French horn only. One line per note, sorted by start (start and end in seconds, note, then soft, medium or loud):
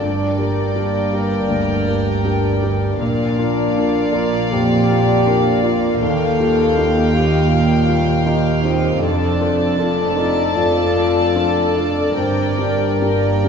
0.02 0.49 D4 medium
0.75 2.58 A#3 medium
3.00 4.15 D4 medium
4.14 4.53 A#4 medium
4.52 5.64 G4 loud
5.62 6.01 F4 medium
6.01 7.15 A4 medium
7.13 7.50 G4 medium
7.49 8.27 F4 medium
8.26 8.63 D#4 medium
8.63 9.03 C4 medium
9.01 10.17 D4 medium
10.16 10.57 D#4 medium
10.55 11.77 F4 medium
11.75 12.14 D4 medium
12.14 12.69 C4 medium
13.00 13.48 A#3 medium